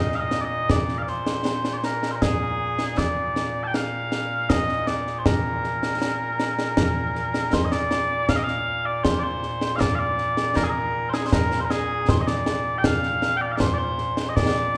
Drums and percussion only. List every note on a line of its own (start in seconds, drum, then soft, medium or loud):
0.12 snare soft
0.31 snare medium
0.70 concert bass drum medium
0.70 snare loud
0.89 snare soft
1.08 snare soft
1.26 snare medium
1.45 snare medium
1.65 snare medium
1.84 snare medium
2.03 snare medium
2.22 concert bass drum medium
2.22 snare loud
2.79 snare medium
2.98 concert bass drum medium
2.98 snare medium
3.36 snare medium
3.74 snare medium
4.12 snare medium
4.50 concert bass drum medium
4.50 snare loud
4.69 snare soft
4.87 snare medium
5.07 snare soft
5.26 concert bass drum medium
5.26 snare loud
5.64 snare soft
5.83 snare medium
6.02 snare medium
6.40 snare medium
6.59 snare medium
6.77 concert bass drum medium
6.77 snare loud
7.15 snare soft
7.34 snare medium
7.53 concert bass drum medium
7.53 snare loud
7.72 snare medium
7.91 snare medium
8.29 concert bass drum medium
8.29 snare loud
8.48 snare soft
9.05 concert bass drum medium
9.05 snare loud
9.43 snare soft
9.61 snare medium
9.81 concert bass drum medium
9.81 snare loud
10.18 snare soft
10.37 snare medium
10.56 concert bass drum medium
10.56 snare loud
11.14 snare medium
11.32 concert bass drum medium
11.32 snare loud
11.52 snare medium
11.70 snare medium
12.09 concert bass drum medium
12.09 snare loud
12.28 snare medium
12.46 snare medium
12.84 concert bass drum medium
12.84 snare loud
13.03 snare soft
13.22 snare medium
13.60 concert bass drum medium
13.60 snare loud
13.98 snare soft
14.17 snare medium
14.37 concert bass drum medium
14.37 snare loud